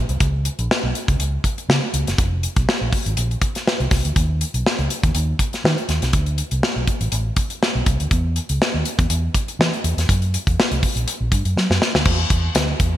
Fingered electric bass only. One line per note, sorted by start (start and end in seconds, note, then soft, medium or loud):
0.09 0.17 C2 medium
0.20 0.47 C#2 loud
0.59 0.67 A#1 medium
0.83 0.91 B1 medium
1.08 1.16 C#2 medium
1.19 1.37 C#2 medium
1.69 1.78 C#3 medium
1.94 2.03 C#2 medium
2.07 2.15 F#1 medium
2.18 2.45 F1 medium
2.57 2.64 B1 medium
2.81 2.89 A#1 medium
3.06 3.14 G#1 medium
3.17 3.35 A#1 medium
3.80 3.88 C2 medium
3.91 4.01 C2 medium
4.05 4.13 D2 medium
4.16 4.43 D#2 medium
4.54 4.62 B1 medium
4.79 4.87 C#2 medium
5.04 5.12 D#2 medium
5.15 5.32 D#2 medium
5.64 5.74 D#3 loud
5.89 5.98 D#2 medium
6.02 6.10 B1 medium
6.13 6.40 D2 loud
6.52 6.60 C2 medium
6.76 6.84 B1 medium
7.01 7.09 A1 medium
7.12 7.30 A1 medium
7.75 7.83 B1 medium
7.87 7.96 C2 medium
8.00 8.08 D2 medium
8.11 8.38 E2 loud
8.50 8.57 C#2 medium
8.74 8.82 D#2 medium
8.99 9.07 E2 medium
9.10 9.27 E2 medium
9.59 9.69 E3 medium
9.84 9.93 E2 medium
9.97 10.05 E2 medium
10.09 10.36 F#2 medium
10.47 10.55 E2 medium
10.71 10.79 C2 medium
10.96 11.04 A#1 medium
11.21 11.29 A#1 medium
11.32 11.41 G2 medium
11.45 11.53 F#2 medium
11.57 11.66 F#3 medium
11.70 11.78 F#2 medium
11.95 12.03 D2 medium
12.06 12.23 E2 loud
12.30 12.48 E2 medium
12.55 12.72 D2 medium
12.80 12.97 E2 medium